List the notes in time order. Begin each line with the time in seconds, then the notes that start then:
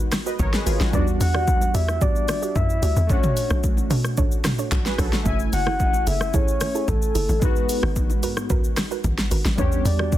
Already playing: G#3 B3 D#4 F#4 A#4 B4
0.12 cross-stick, snare, open hi-hat, low bongo, shaker
0.26 F#4 A#4 B4 D#5, shaker
0.39 G#1 A#4 C#5, kick, high bongo, low conga, shaker
0.53 G#4 B4, snare, shaker
0.66 G#1 F4 F#4 G#4 A#4 B4, open hi-hat, shaker
0.80 A1 D#4 F#4, snare, low bongo, shaker
0.91 E2 G3 B3 D4 D5, kick, low conga, shaker
0.96 F#4
1.07 shaker
1.20 E2 F#5, open hi-hat, shaker
1.34 F#4 G4 D5, cross-stick, low bongo
1.48 kick, high bongo, shaker
1.61 high bongo, shaker
1.74 E2 F#4 G4 D5 E5, open hi-hat, shaker
1.88 cross-stick, high bongo, shaker
2.01 F#4 G4 D5, kick, low conga, shaker
2.16 shaker
2.28 cross-stick, open hi-hat, low bongo, shaker
2.42 F#4 G4 D5, shaker
2.56 F#2 E5, kick, high bongo, low conga, shaker
2.70 shaker
2.82 D2 F#4 G4 D5, open hi-hat, shaker
2.96 E2, low bongo, shaker
3.07 A3 C#4 D4 C#5, kick, low conga, shaker
3.13 F#4
3.23 mid tom, shaker
3.37 open hi-hat, shaker
3.50 B1 D4 A4 C#5, cross-stick, low bongo, shaker
3.64 kick, high bongo, shaker
3.77 high bongo, shaker
3.90 B2 D4 A4 C#5, open hi-hat, shaker
4.04 cross-stick, high bongo, shaker
4.17 D4 A4 C#5, kick, low conga, shaker
4.32 shaker
4.44 cross-stick, snare, mid tom, open hi-hat, low bongo, shaker
4.58 D4 A4 C#5, shaker
4.72 B1 D4 F#4, kick, clap, high bongo, low conga, shaker
4.86 G#4 B4, snare, shaker
4.98 B1 D4 F#4 A4 C#5, kick, cross-stick, open hi-hat, shaker
5.13 D4 F#4, snare, low bongo, shaker
5.23 F#1 A3 C#4 E4 E5, kick, low conga, shaker
5.29 G#5
5.40 shaker
5.53 F#1 F#5, open hi-hat, shaker
5.67 E4 G#4 A4, cross-stick, low bongo
5.80 kick, high bongo, shaker
5.93 high bongo, shaker
6.07 F#1 E4 G#4 A4 E5, open hi-hat, shaker
6.21 cross-stick, high bongo, shaker
6.34 E4 G#4 A4 C#5, kick, low conga, shaker
6.48 shaker
6.61 cross-stick, open hi-hat, low bongo, shaker
6.75 E4 G#4 A4, shaker
6.88 A1 A4, kick, high bongo, low conga, shaker
7.02 shaker
7.15 F#1 E4 G#4 A4, open hi-hat, shaker
7.29 A1, low bongo, shaker
7.39 G#3 B3 D#4 B4, kick, low conga, shaker
7.45 F#4
7.56 shaker
7.69 open hi-hat, shaker
7.83 G#1 F#4 A#4 B4, cross-stick, low bongo
7.96 kick, high bongo, shaker
8.10 high bongo, shaker
8.23 G#2 F#4 A#4 B4, open hi-hat, shaker
8.37 cross-stick, high bongo, shaker
8.50 F#4 A#4 B4, kick, low conga, shaker
8.64 shaker
8.77 cross-stick, snare, open hi-hat, low bongo, shaker
8.91 F#4 A#4 B4, shaker
9.04 G#1, kick, high bongo, low conga, shaker
9.18 snare, shaker
9.31 G#1 F#4 A#4 B4, open hi-hat, shaker
9.45 A1, snare, low bongo, shaker
9.56 E2 G3 B3 D4 C#5, kick, low conga, shaker
9.61 G4
9.72 shaker
9.85 E2 D5, open hi-hat, shaker
9.99 F#4 G4 D5, cross-stick, low bongo
10.12 kick, high bongo, shaker